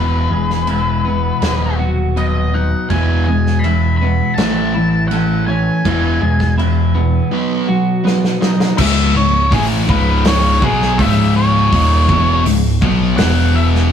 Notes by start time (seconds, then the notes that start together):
Already playing: E1 E2 B2 E3 B4
0.30 E1 E2 B2 G#3
0.50 snare
0.67 E2 B2 E4, crash
1.05 E2 B2 B3
1.42 D#1 B2 F#3 B3, snare, crash
1.79 B2 F#3 F#4
2.16 B2 F#3 B3 D#5, crash
2.54 B2 F#3 D#4 F#5
2.90 E1 E2 B2 E3 G#5, kick, crash
3.24 E2 B2 G#3 G#5
3.47 snare
3.59 B5
3.64 E2 B2 E4, crash
3.97 B3 B5
4.02 E2 B2
4.34 A5, crash
4.38 A1 A2 E3 A3, snare
4.74 A2 E3 E4
5.08 F#5, crash
5.12 A2 E3 A3
5.47 A2 E3 C#4 G#5
5.85 E1 E2 B2 E3, kick, crash
6.21 E1 E2 B2 G#3
6.40 kick, snare
6.58 E2 B2 E4, crash
6.94 E2 B2 B3
7.31 B2 F#3 B3
7.68 B2 F#3 F#4
8.05 B2 F#3 B3, snare
8.24 snare
8.41 B2 F#3 D#4, snare
8.60 snare
8.78 C#1 C#2 G#2 C#3 E5, kick, crash
9.15 C#1 C#2 G#2 C#5
9.51 A1 A2 E3 A3 G#4, kick, open hi-hat
9.87 C#1 C#2 G#2 C#3 B4, kick
10.25 C#5, snare, open hi-hat
10.61 B1 B2 F#3 B3 G#4, kick
10.82 snare
10.98 C#1 C#2 G#2 C#3 E5, kick, open hi-hat
11.36 C#5
11.71 D#1 D#2 A#2 D#3, kick, open hi-hat
12.08 E1 E2 B2 E3, kick
12.45 C#1 C#2 G#2, open hi-hat
12.81 B1 B2 F#3 B3, kick
13.17 E1 E2 B2 E3 F#5, snare, open hi-hat
13.55 E5
13.75 snare